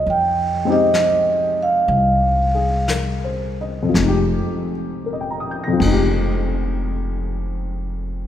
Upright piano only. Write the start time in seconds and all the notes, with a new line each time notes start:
Already playing: D#4 F4 G#4
0.65 G#3 C4 D#4
0.70 G4
2.55 G#4
2.90 A#4
3.24 C5
3.61 D#5
3.83 F2
3.89 F3
3.95 G#3
4.02 D#4
4.08 G4
5.06 A#4
5.13 D#5
5.21 G5
5.31 A#5
5.40 D#6
5.51 G6
5.64 A#6
5.68 F2
5.73 F3
5.79 G#3
5.86 D#4
5.92 G4